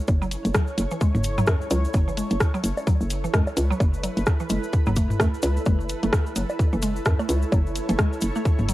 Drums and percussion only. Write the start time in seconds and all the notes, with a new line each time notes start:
0.08 kick, high bongo, cabasa
0.22 cabasa
0.31 closed hi-hat, cabasa
0.45 closed hi-hat, cabasa
0.54 kick, cross-stick, cabasa
0.67 cabasa
0.78 closed hi-hat, cabasa
0.91 cabasa
1.01 kick, cabasa
1.15 mid tom, cabasa
1.24 closed hi-hat, cabasa
1.38 mid tom, cabasa
1.47 kick, cross-stick, cabasa
1.61 cabasa
1.71 closed hi-hat, high bongo, cabasa
1.85 cabasa
1.94 kick, high bongo, cabasa
2.09 cabasa
2.17 closed hi-hat, cabasa
2.31 closed hi-hat, cabasa
2.40 kick, cross-stick, cabasa
2.55 cabasa
2.64 closed hi-hat, cabasa
2.77 cabasa, low woodblock
2.87 kick, cabasa
3.01 cabasa
3.10 closed hi-hat, cabasa
3.24 cabasa
3.34 kick, cross-stick, cabasa
3.47 high bongo, cabasa
3.57 closed hi-hat, cabasa
3.72 cabasa
3.80 kick, high bongo, cabasa
3.94 cabasa
4.03 closed hi-hat, cabasa, low woodblock
4.17 closed hi-hat, cabasa
4.26 kick, cross-stick, cabasa
4.40 cabasa
4.49 closed hi-hat, cabasa
4.63 cabasa
4.73 kick, cabasa
4.86 mid tom, cabasa
4.96 kick, closed hi-hat, cabasa
5.10 mid tom, cabasa
5.20 kick, cross-stick, cabasa
5.34 cabasa
5.42 closed hi-hat, high bongo, cabasa
5.57 cabasa
5.65 kick, high bongo, cabasa
5.80 cabasa
5.89 closed hi-hat, cabasa
6.03 closed hi-hat, cabasa
6.13 kick, cross-stick, cabasa
6.26 cabasa
6.36 closed hi-hat, cabasa
6.49 cabasa, low woodblock
6.59 kick, cabasa
6.73 cabasa
6.82 closed hi-hat, cabasa
6.96 cabasa
7.05 kick, cross-stick, cabasa
7.19 high bongo, cabasa
7.29 closed hi-hat, cabasa
7.42 cabasa
7.52 kick, high bongo, cabasa
7.67 cabasa
7.76 closed hi-hat, cabasa
7.89 closed hi-hat, cabasa
7.99 kick, cross-stick, cabasa
8.13 cabasa
8.21 closed hi-hat, cabasa
8.35 cabasa
8.45 kick, cabasa
8.59 mid tom, cabasa
8.68 closed hi-hat, cabasa